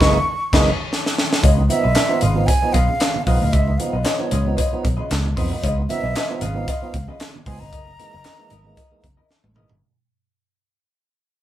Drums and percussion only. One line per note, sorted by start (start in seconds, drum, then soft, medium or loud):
0.01 kick loud
0.01 snare loud
0.53 kick loud
0.53 snare loud
0.53 crash medium
0.93 snare medium
1.06 snare medium
1.18 snare medium
1.33 snare loud
1.44 kick loud
1.44 closed hi-hat loud
1.57 muted conga soft
1.69 closed hi-hat medium
1.69 high conga medium
1.95 snare loud
1.95 clap medium
1.95 closed hi-hat medium
1.95 muted conga soft
2.08 muted conga soft
2.21 closed hi-hat medium
2.21 low conga medium
2.34 high conga medium
2.48 kick loud
2.48 closed hi-hat loud
2.74 kick loud
2.74 closed hi-hat medium
2.74 high conga medium
2.88 high conga medium
3.00 snare loud
3.00 clap medium
3.00 closed hi-hat medium
3.00 muted conga soft
3.16 high conga medium
3.27 kick medium
3.27 open hi-hat medium
3.27 low conga medium
3.42 low conga medium
3.53 kick loud
3.53 closed hi-hat loud
3.53 muted conga soft
3.67 muted conga soft
3.80 closed hi-hat medium
3.80 high conga medium
4.05 snare loud
4.05 clap medium
4.05 closed hi-hat loud
4.05 muted conga soft
4.18 muted conga soft
4.31 closed hi-hat medium
4.31 low conga medium
4.45 high conga medium
4.58 kick loud
4.58 closed hi-hat loud
4.85 kick loud
4.85 closed hi-hat medium
4.85 high conga medium
4.97 high conga medium
5.11 snare medium
5.11 clap medium
5.11 closed hi-hat medium
5.26 high conga medium
5.37 kick medium
5.37 open hi-hat medium
5.37 low conga medium
5.52 low conga medium
5.63 kick loud
5.63 closed hi-hat loud
5.63 muted conga soft
5.89 closed hi-hat medium
5.89 high conga medium
6.16 snare loud
6.16 clap medium
6.16 closed hi-hat medium
6.16 muted conga soft
6.28 muted conga soft
6.41 closed hi-hat medium
6.41 low conga medium
6.54 high conga medium
6.68 kick loud
6.68 closed hi-hat loud
6.68 muted conga soft
6.82 muted conga soft
6.94 kick medium
6.94 closed hi-hat medium
6.94 high conga medium
7.08 high conga medium
7.20 snare loud
7.20 clap medium
7.20 closed hi-hat medium
7.20 muted conga soft
7.36 muted conga soft
7.36 high conga medium
7.46 kick medium
7.46 open hi-hat medium
7.46 low conga medium
7.62 low conga medium
7.73 kick loud
7.73 closed hi-hat loud
7.99 closed hi-hat medium
7.99 high conga medium
8.24 snare loud
8.24 clap loud
8.24 closed hi-hat loud
8.24 muted conga soft
8.50 closed hi-hat medium
8.50 low conga medium
8.64 high conga medium
8.77 kick loud
8.77 closed hi-hat loud
8.91 muted conga soft
9.04 kick loud
9.04 closed hi-hat medium
9.04 high conga medium
9.17 high conga medium
9.31 snare medium
9.44 high tom medium
9.44 high conga medium
9.55 mid tom medium
9.55 low conga medium
9.69 floor tom medium
9.69 low conga medium